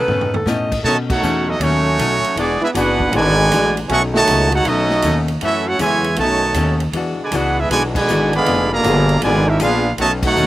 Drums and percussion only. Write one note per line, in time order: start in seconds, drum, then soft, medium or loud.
0.08 floor tom medium
0.21 floor tom medium
0.34 floor tom loud
0.47 snare medium
0.47 hi-hat pedal medium
0.72 kick medium
0.72 crash medium
1.10 kick loud
1.10 crash medium
1.23 hi-hat pedal medium
1.61 ride medium
1.99 hi-hat pedal medium
1.99 ride medium
2.24 ride medium
2.37 ride medium
2.75 hi-hat pedal medium
2.75 ride medium
3.00 kick medium
3.13 ride medium
3.52 hi-hat pedal medium
3.52 ride medium
3.77 ride medium
3.89 ride medium
4.15 snare medium
4.27 hi-hat pedal medium
4.27 ride medium
4.52 ride medium
4.65 ride medium
4.90 snare soft
5.02 hi-hat pedal medium
5.02 ride medium
5.28 ride medium
5.41 ride medium
5.79 hi-hat pedal medium
5.79 ride medium
6.04 ride medium
6.16 ride medium
6.54 hi-hat pedal medium
6.54 ride medium
6.80 ride medium
6.93 ride medium
7.32 hi-hat pedal medium
7.32 ride medium
7.71 ride medium
7.95 kick loud
7.95 crash medium
8.08 hi-hat pedal medium
8.33 ride medium
8.46 ride medium
8.84 hi-hat pedal medium
8.84 ride medium
9.09 ride medium
9.22 ride medium
9.60 hi-hat pedal medium
9.60 ride medium
9.98 ride medium
10.23 kick loud
10.23 crash medium
10.36 hi-hat pedal medium